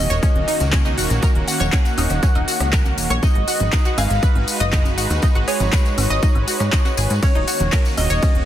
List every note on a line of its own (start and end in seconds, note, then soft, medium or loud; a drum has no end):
0.00 3.19 D#3 medium
0.00 3.19 A#3 medium
0.00 3.19 C#4 medium
0.00 3.19 F#4 medium
0.00 0.63 D#5 medium
0.00 0.63 D#5 loud
0.00 impact medium
0.10 0.20 D#1 medium
0.10 0.19 C#5 loud
0.10 closed hi-hat medium
0.10 tambourine soft
0.23 0.35 C#4 medium
0.23 kick loud
0.23 closed hi-hat medium
0.23 tambourine soft
0.35 0.45 D#1 medium
0.35 closed hi-hat soft
0.35 high conga medium
0.48 0.60 D#4 medium
0.48 open hi-hat loud
0.48 tambourine medium
0.60 0.99 C#2 medium
0.60 closed hi-hat medium
0.60 tambourine soft
0.73 0.78 C#4 medium
0.73 kick loud
0.73 clap loud
0.73 closed hi-hat medium
0.73 tambourine soft
0.85 0.90 D#4 medium
0.85 closed hi-hat soft
0.85 tambourine soft
0.85 high conga medium
0.98 1.07 D#1 medium
0.98 1.06 F#4 medium
0.98 open hi-hat medium
0.98 tambourine loud
1.10 1.20 A#1 medium
1.10 closed hi-hat medium
1.10 tambourine soft
1.23 1.28 A#4 medium
1.23 kick loud
1.23 closed hi-hat medium
1.23 tambourine medium
1.23 high conga loud
1.35 1.45 D#1 medium
1.35 closed hi-hat soft
1.48 3.13 F#5 medium
1.48 3.13 F#5 loud
1.48 open hi-hat loud
1.48 tambourine loud
1.60 1.70 D#1 medium
1.60 1.69 C#5 loud
1.60 closed hi-hat medium
1.60 tambourine soft
1.60 high conga medium
1.60 low conga medium
1.72 1.85 C#4 medium
1.72 kick loud
1.72 clap loud
1.72 closed hi-hat medium
1.72 tambourine medium
1.85 closed hi-hat soft
1.85 tambourine soft
1.98 2.07 D#1 medium
1.98 2.10 D#4 medium
1.98 open hi-hat loud
1.98 tambourine medium
1.98 high conga loud
1.98 high woodblock medium
2.10 2.20 D#1 medium
2.10 cross-stick medium
2.10 closed hi-hat medium
2.10 tambourine soft
2.23 2.28 C#4 medium
2.23 kick loud
2.23 closed hi-hat medium
2.23 tambourine medium
2.35 2.45 D#1 medium
2.35 2.40 D#4 medium
2.35 closed hi-hat soft
2.35 high conga medium
2.35 high woodblock medium
2.48 2.56 F#4 medium
2.48 open hi-hat loud
2.48 tambourine loud
2.60 2.99 C#2 medium
2.60 cross-stick medium
2.60 closed hi-hat medium
2.60 tambourine soft
2.73 2.78 A#4 medium
2.73 kick loud
2.73 clap loud
2.73 closed hi-hat medium
2.73 tambourine soft
2.85 closed hi-hat soft
2.85 tambourine soft
2.85 high conga medium
2.98 3.07 D#1 medium
2.98 open hi-hat medium
2.98 tambourine loud
3.10 3.20 A#1 medium
3.10 3.19 C#5 loud
3.10 closed hi-hat soft
3.10 tambourine soft
3.23 7.19 G#3 medium
3.23 7.19 D#4 medium
3.23 3.35 D#4 medium
3.23 7.19 F#4 medium
3.23 7.19 B4 medium
3.23 3.99 D#5 loud
3.23 3.98 D#5 loud
3.23 kick loud
3.23 closed hi-hat medium
3.23 tambourine medium
3.23 high conga loud
3.35 3.45 G#1 medium
3.35 closed hi-hat soft
3.48 3.60 F#4 medium
3.48 open hi-hat loud
3.48 tambourine loud
3.60 3.70 G#1 medium
3.60 closed hi-hat medium
3.60 tambourine soft
3.60 high conga medium
3.60 low conga medium
3.73 3.78 D#4 medium
3.73 kick loud
3.73 clap loud
3.73 closed hi-hat medium
3.73 tambourine medium
3.85 3.91 F#4 medium
3.85 closed hi-hat soft
3.85 tambourine soft
3.98 4.07 G#1 loud
3.98 4.07 G#4 medium
3.98 4.63 F5 loud
3.98 4.63 F5 medium
3.98 open hi-hat loud
3.98 tambourine loud
3.98 high conga medium
3.98 high woodblock medium
4.10 4.20 G#1 medium
4.10 closed hi-hat medium
4.10 tambourine soft
4.23 4.28 B4 medium
4.23 kick loud
4.23 closed hi-hat soft
4.23 tambourine medium
4.35 4.45 G#1 medium
4.35 closed hi-hat soft
4.35 high conga medium
4.48 open hi-hat loud
4.48 tambourine loud
4.60 4.99 F#1 medium
4.60 4.69 D#5 loud
4.60 closed hi-hat medium
4.60 tambourine soft
4.73 4.85 D#4 medium
4.73 kick loud
4.73 clap loud
4.73 closed hi-hat medium
4.73 tambourine medium
4.85 closed hi-hat soft
4.85 tambourine soft
4.85 high conga medium
4.98 5.07 G#1 medium
4.98 5.10 F#4 medium
4.98 open hi-hat loud
4.98 tambourine loud
5.10 5.20 D#2 medium
5.10 closed hi-hat soft
5.10 tambourine soft
5.22 5.28 D#4 medium
5.22 kick loud
5.22 closed hi-hat soft
5.22 tambourine soft
5.22 high conga medium
5.35 5.45 G#1 medium
5.35 5.40 F#4 medium
5.35 closed hi-hat soft
5.48 5.56 G#4 medium
5.48 7.13 C#5 loud
5.48 7.13 C#5 medium
5.48 cross-stick medium
5.48 open hi-hat loud
5.48 tambourine medium
5.60 5.70 G#1 medium
5.60 closed hi-hat soft
5.60 tambourine soft
5.60 high conga medium
5.60 low conga medium
5.73 5.78 B4 medium
5.73 kick loud
5.73 clap loud
5.73 closed hi-hat medium
5.73 tambourine medium
5.85 closed hi-hat soft
5.85 tambourine soft
5.98 6.07 G#1 medium
5.98 open hi-hat loud
5.98 tambourine medium
5.98 high conga medium
5.98 high woodblock medium
6.10 6.20 G#1 medium
6.10 6.19 D#5 loud
6.10 cross-stick medium
6.10 closed hi-hat soft
6.10 tambourine soft
6.23 6.35 D#4 medium
6.23 kick loud
6.23 closed hi-hat soft
6.23 tambourine soft
6.35 6.45 G#1 medium
6.35 closed hi-hat soft
6.35 high conga medium
6.35 high woodblock medium
6.48 6.60 F#4 medium
6.48 open hi-hat loud
6.48 tambourine loud
6.60 6.70 G#2 medium
6.60 cross-stick medium
6.60 closed hi-hat medium
6.60 tambourine soft
6.72 6.78 D#4 medium
6.72 kick loud
6.72 clap loud
6.72 closed hi-hat soft
6.72 tambourine medium
6.85 6.90 F#4 medium
6.85 closed hi-hat soft
6.85 tambourine soft
6.85 high conga medium
6.97 7.07 G#1 medium
6.97 7.06 G#4 medium
6.97 open hi-hat loud
6.97 tambourine loud
7.10 7.20 G#2 medium
7.10 closed hi-hat medium
7.10 tambourine soft
7.22 8.45 D#3 medium
7.22 8.45 A#3 medium
7.22 8.45 C#4 medium
7.22 7.28 C#4 medium
7.22 8.45 F#4 loud
7.22 7.88 C#5 loud
7.22 kick loud
7.22 closed hi-hat medium
7.22 ride medium
7.22 tambourine medium
7.22 high conga loud
7.35 7.45 D#1 medium
7.35 7.40 D#4 medium
7.35 closed hi-hat soft
7.48 7.56 F#4 medium
7.48 open hi-hat loud
7.48 tambourine loud
7.60 7.70 D#1 medium
7.60 closed hi-hat soft
7.60 tambourine soft
7.60 high conga medium
7.60 low conga medium
7.72 7.78 A#4 medium
7.72 kick loud
7.72 clap loud
7.72 closed hi-hat medium
7.72 ride medium
7.72 tambourine medium
7.85 closed hi-hat soft
7.85 tambourine soft
7.97 8.07 D#1 medium
7.97 8.45 D#5 medium
7.97 8.45 D#5 loud
7.97 open hi-hat medium
7.97 tambourine loud
7.97 high conga medium
7.97 high woodblock medium
8.10 8.20 D#1 medium
8.10 8.19 C#5 loud
8.10 closed hi-hat soft
8.10 tambourine soft
8.23 8.35 C#4 medium
8.23 kick loud
8.23 closed hi-hat soft
8.23 ride medium
8.23 tambourine soft
8.35 8.45 D#1 medium
8.35 closed hi-hat soft
8.35 high conga medium